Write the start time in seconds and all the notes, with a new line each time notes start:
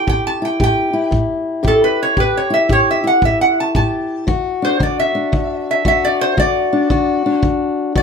Already playing: E4
0.07 A2 G4 G5, kick
0.27 A5
0.42 E4 G5
0.60 A2 G4 G5, kick
0.93 E4
1.11 A2, kick
1.63 A2 G4, kick
1.68 A4
1.84 B4
2.03 C#5
2.17 A2 G4 B4, kick
2.37 C#5
2.50 E4 E5
2.69 A2 G4 C#5, kick
2.91 E5
3.04 E4 F#5
3.22 A2 E5, kick
3.41 F#5
3.60 A5
3.75 A2 G4 A5, kick
4.27 D3 F#4, kick
4.62 D4 C5
4.80 D3 F#4 D5, kick
5.00 E5
5.15 D4
5.32 D3, kick
5.71 E5
5.85 D3 F#4 E5, kick
6.05 D5
6.21 C5
6.37 D3 F#4 D5, kick
6.73 D4
6.90 D3 F#4, kick
7.26 D4
7.42 D3, kick
7.95 D3 F#4 D5, kick